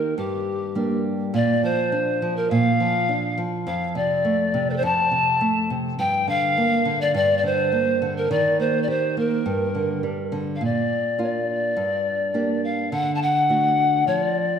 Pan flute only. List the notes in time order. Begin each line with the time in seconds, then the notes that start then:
Already playing: A#4
0.18 G4
1.35 D5
1.64 C5
2.36 A#4
2.50 F5
3.67 F5
3.96 D5
4.69 A4 C5
4.76 C5
4.84 A5
5.99 G5
6.28 F5
7.01 D5
7.15 D5
7.37 D5
7.45 C5
8.16 A#4
8.31 D5
8.60 C5
8.82 D5
8.89 C5
9.18 A#4
10.55 F5
10.64 D5
11.22 D5
12.64 F5
12.92 F#5
13.14 A5
13.21 F#5
14.07 C#5
14.19 D5